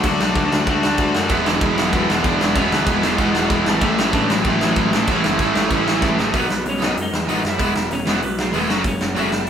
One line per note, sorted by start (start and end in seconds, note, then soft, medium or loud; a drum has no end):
0.03 0.19 D2 loud
0.03 0.66 D3 medium
0.03 0.20 D3 loud
0.03 0.34 F#3 medium
0.03 0.20 A3 loud
0.03 0.67 A3 loud
0.03 0.19 D4 loud
0.03 0.68 D4 loud
0.03 0.34 F#4 loud
0.03 kick loud
0.03 crash medium
0.07 0.68 F#4 loud
0.20 0.35 B1 medium
0.20 0.35 D3 medium
0.20 0.36 A3 medium
0.20 0.37 D4 medium
0.20 snare loud
0.35 0.51 D2 medium
0.35 0.52 D3 medium
0.35 0.44 F#3 medium
0.35 0.52 A3 loud
0.35 0.51 D4 medium
0.35 0.44 F#4 loud
0.35 kick loud
0.35 crash medium
0.46 0.67 D4 loud
0.46 0.67 D5 medium
0.52 0.67 D2 medium
0.52 0.67 D3 medium
0.52 0.68 A3 medium
0.52 0.69 D4 medium
0.52 snare loud
0.67 0.82 D2 medium
0.67 1.30 D3 medium
0.67 0.84 D3 loud
0.67 1.31 A3 medium
0.67 0.83 A3 medium
0.67 0.82 D4 loud
0.67 1.31 D4 medium
0.67 0.83 D4 loud
0.67 0.83 D5 medium
0.67 kick loud
0.67 crash medium
0.71 1.32 F#4 medium
0.83 0.98 D2 medium
0.83 0.98 D3 medium
0.83 0.99 A3 medium
0.83 1.13 D4 loud
0.83 1.00 D4 loud
0.83 1.13 D5 medium
0.83 snare loud
0.98 1.14 D2 medium
0.98 1.16 D3 medium
0.98 1.14 A3 loud
0.98 1.14 D4 loud
0.98 kick loud
0.98 crash medium
1.15 1.32 F#2 medium
1.15 1.31 D3 medium
1.15 1.30 A3 medium
1.15 1.30 D4 medium
1.15 snare loud
1.29 1.45 E1 medium
1.29 1.48 E2 medium
1.29 1.46 B2 loud
1.29 1.92 E3 medium
1.29 1.46 E3 loud
1.29 1.93 G#3 loud
1.29 1.46 B3 medium
1.29 1.94 B3 medium
1.29 1.46 B4 medium
1.29 kick loud
1.29 crash medium
1.34 1.97 E4 loud
1.46 1.61 E1 medium
1.46 1.62 E2 medium
1.46 1.61 B2 medium
1.46 1.63 E3 medium
1.46 1.63 D4 medium
1.46 1.62 D5 medium
1.46 snare loud
1.61 1.77 E1 medium
1.61 1.79 E2 medium
1.61 1.77 B2 medium
1.61 1.77 E3 loud
1.61 1.78 E3 medium
1.61 1.77 E4 loud
1.61 kick loud
1.61 crash medium
1.77 1.92 E1 medium
1.77 1.93 E2 medium
1.77 1.94 B2 medium
1.77 1.95 E3 medium
1.77 1.93 F#3 medium
1.77 1.93 F#4 medium
1.77 snare loud
1.93 2.08 E1 medium
1.93 2.10 E2 medium
1.93 2.09 B2 loud
1.93 2.55 E3 medium
1.93 2.09 E3 loud
1.93 2.09 F#3 medium
1.93 2.55 G#3 medium
1.93 2.57 B3 medium
1.93 2.09 F#4 medium
1.93 kick loud
1.93 crash medium
1.97 2.58 E4 medium
2.09 2.24 E1 medium
2.09 2.24 E2 medium
2.09 2.25 B2 medium
2.09 2.26 E3 medium
2.09 2.24 E3 medium
2.09 2.25 E4 medium
2.09 snare loud
2.24 2.40 E1 medium
2.24 2.42 E2 medium
2.24 2.41 B2 loud
2.24 2.41 E3 loud
2.24 2.58 D4 loud
2.24 2.55 D5 medium
2.24 kick loud
2.24 crash medium
2.41 2.55 E1 loud
2.41 2.55 E2 medium
2.41 2.56 B2 medium
2.41 2.57 E3 medium
2.41 snare loud
2.55 2.71 E1 loud
2.55 2.72 E2 loud
2.55 2.71 B2 loud
2.55 3.18 E3 medium
2.55 2.72 E3 loud
2.55 3.19 G#3 loud
2.55 3.19 B3 loud
2.55 2.72 C#4 loud
2.55 3.21 E4 loud
2.55 2.71 C#5 medium
2.55 kick loud
2.55 crash medium
2.72 2.86 D2 medium
2.72 2.87 E2 medium
2.72 2.88 B2 medium
2.72 2.89 E3 medium
2.72 3.02 B3 medium
2.72 3.02 B4 medium
2.72 snare loud
2.86 3.02 E1 medium
2.86 3.04 E2 loud
2.86 3.03 B2 medium
2.86 3.03 E3 loud
2.86 kick loud
2.86 crash medium
3.03 3.18 E1 loud
3.03 3.19 E2 medium
3.03 3.19 B2 medium
3.03 3.21 E3 loud
3.03 3.62 G#3 medium
3.03 3.63 G#4 medium
3.03 snare loud
3.18 3.34 E1 medium
3.18 3.34 E2 medium
3.18 3.34 B2 loud
3.18 3.83 E3 medium
3.18 3.33 E3 loud
3.18 3.82 G#3 medium
3.18 3.82 B3 medium
3.18 3.85 E4 medium
3.18 kick loud
3.18 crash medium
3.34 3.50 E1 medium
3.34 3.49 E2 medium
3.34 3.49 B2 medium
3.34 3.51 E3 loud
3.34 snare loud
3.50 3.65 E1 medium
3.50 3.66 E2 medium
3.50 3.65 B2 loud
3.50 3.65 E3 loud
3.50 kick loud
3.50 crash medium
3.65 3.81 G#1 loud
3.65 3.82 E2 medium
3.65 3.81 B2 medium
3.65 3.81 E3 medium
3.65 snare loud
3.81 3.97 A1 loud
3.81 3.98 A2 loud
3.81 4.44 A2 loud
3.81 3.98 E3 loud
3.81 4.45 E3 loud
3.81 3.99 A3 medium
3.81 3.97 A3 loud
3.81 4.45 A3 loud
3.81 4.46 C#4 loud
3.81 3.97 A4 medium
3.81 kick loud
3.81 crash medium
3.86 4.46 E4 loud
3.97 4.12 A1 medium
3.97 4.13 A2 medium
3.97 4.14 E3 medium
3.97 4.15 A3 loud
3.97 4.14 C#4 medium
3.97 4.13 C#5 medium
3.97 snare loud
4.13 4.28 A1 medium
4.13 4.30 A2 medium
4.13 4.29 E3 loud
4.13 4.28 A3 loud
4.13 4.30 D4 loud
4.13 4.30 D5 medium
4.13 kick loud
4.13 crash medium
4.29 4.44 A1 medium
4.29 4.45 A2 medium
4.29 4.45 E3 medium
4.29 4.45 F#3 medium
4.29 4.46 A3 medium
4.29 4.45 F#4 medium
4.29 snare loud
4.44 4.60 A1 medium
4.44 5.07 A2 medium
4.44 4.61 A2 medium
4.44 4.60 E3 loud
4.44 5.08 E3 medium
4.44 4.61 F#3 medium
4.44 4.60 A3 loud
4.44 5.08 A3 medium
4.44 5.09 C#4 medium
4.44 4.62 F#4 medium
4.44 kick loud
4.44 crash medium
4.49 5.09 E4 medium
4.61 4.76 A1 medium
4.61 4.74 A2 medium
4.61 4.75 E3 medium
4.61 4.92 F#3 medium
4.61 4.76 A3 loud
4.61 4.95 F#4 medium
4.61 snare loud
4.76 4.91 A1 medium
4.76 4.93 A2 loud
4.76 4.92 E3 loud
4.76 4.92 A3 loud
4.76 kick loud
4.76 crash medium
4.93 5.07 A1 medium
4.93 5.08 A2 medium
4.93 5.09 E3 medium
4.93 6.01 E3 medium
4.93 5.09 A3 medium
4.93 6.00 E4 medium
4.93 snare loud
5.07 5.23 A1 loud
5.07 5.70 A2 medium
5.07 5.25 A2 loud
5.07 5.71 E3 medium
5.07 5.24 E3 loud
5.07 5.71 A3 medium
5.07 5.23 A3 loud
5.07 5.72 C#4 loud
5.07 kick loud
5.07 crash medium
5.12 5.72 E4 loud
5.24 5.39 F#1 medium
5.24 5.39 A2 medium
5.24 5.39 E3 medium
5.24 5.40 A3 loud
5.24 snare loud
5.39 5.54 A1 medium
5.39 5.55 A2 medium
5.39 5.55 E3 medium
5.39 5.54 A3 loud
5.39 kick loud
5.39 crash medium
5.55 5.70 A1 medium
5.55 5.70 A2 medium
5.55 5.71 E3 medium
5.55 5.72 A3 medium
5.55 snare loud
5.70 5.86 A1 medium
5.70 6.33 A2 medium
5.70 5.87 A2 medium
5.70 6.34 E3 medium
5.70 5.86 E3 loud
5.70 5.86 A3 loud
5.70 6.34 A3 medium
5.70 6.35 C#4 medium
5.70 kick loud
5.70 crash medium
5.75 6.35 E4 medium
5.87 6.01 A1 medium
5.87 6.01 A2 medium
5.87 6.02 E3 medium
5.87 6.03 A3 medium
5.87 snare loud
6.02 6.17 A1 medium
6.02 6.19 A2 medium
6.02 6.19 E3 medium
6.02 6.18 A3 medium
6.02 kick loud
6.02 snare medium
6.19 6.33 A1 medium
6.19 6.34 A2 medium
6.19 6.34 E3 medium
6.19 6.34 A3 loud
6.19 snare medium
6.33 6.48 B1 medium
6.33 6.47 B2 loud
6.33 6.47 D#3 medium
6.33 6.48 F#3 medium
6.33 6.48 B3 loud
6.33 6.48 D#4 medium
6.33 kick loud
6.33 open hi-hat medium
6.39 6.66 B3 medium
6.39 6.66 B4 medium
6.50 6.64 B1 medium
6.50 snare loud
6.66 6.94 B1 medium
6.66 6.97 C#5 medium
6.66 open hi-hat medium
6.70 6.97 C#4 medium
6.79 6.94 B2 medium
6.79 6.94 D#3 medium
6.79 6.95 F#3 medium
6.79 6.93 B3 medium
6.79 snare loud
6.83 6.95 B3 loud
6.83 6.95 D#4 loud
6.97 7.11 F#2 medium
6.97 7.43 D#4 medium
6.97 open hi-hat medium
7.02 7.48 D#5 medium
7.13 7.27 E2 medium
7.13 snare loud
7.28 7.43 A1 medium
7.28 7.41 B2 medium
7.28 7.41 D#3 medium
7.28 7.42 F#3 medium
7.28 7.42 B3 medium
7.28 7.42 D#4 loud
7.28 open hi-hat medium
7.45 7.58 F#2 medium
7.45 7.95 E5 medium
7.45 snare loud
7.49 7.90 E4 medium
7.58 7.74 E1 medium
7.58 7.72 E3 medium
7.58 7.72 G#3 loud
7.58 7.72 B3 medium
7.58 7.73 E4 loud
7.58 kick loud
7.58 open hi-hat medium
7.76 7.90 E1 medium
7.76 snare loud
7.91 8.05 E1 medium
7.91 8.21 C#4 medium
7.91 8.21 C#5 medium
7.91 open hi-hat medium
8.07 8.21 E1 medium
8.07 8.20 E3 medium
8.07 8.20 G#3 medium
8.07 8.20 B3 medium
8.07 8.20 E4 loud
8.07 snare loud
8.22 8.51 B1 medium
8.22 8.38 B3 medium
8.22 8.38 B4 medium
8.22 open hi-hat medium
8.39 8.54 G#3 medium
8.39 8.57 G#4 medium
8.39 snare loud
8.53 8.68 E1 medium
8.53 8.66 E3 medium
8.53 8.67 G#3 medium
8.53 8.77 A3 medium
8.53 8.67 B3 loud
8.53 8.67 E4 loud
8.53 open hi-hat medium
8.57 8.79 A4 loud
8.68 8.84 F#1 loud
8.68 8.82 F#3 medium
8.68 8.82 A3 medium
8.68 8.82 C#4 medium
8.68 8.82 F#4 loud
8.68 snare loud
8.84 8.99 F#1 medium
8.84 9.16 C#4 medium
8.84 9.19 C#5 medium
8.84 kick loud
8.84 open hi-hat medium
9.01 9.15 F#1 medium
9.01 snare loud
9.16 9.45 F#1 loud
9.16 9.29 F#3 medium
9.16 9.29 A3 medium
9.16 9.29 C#4 medium
9.16 9.30 F#4 loud
9.16 9.48 E5 loud
9.16 open hi-hat medium
9.20 9.48 E4 medium
9.32 snare loud
9.47 open hi-hat medium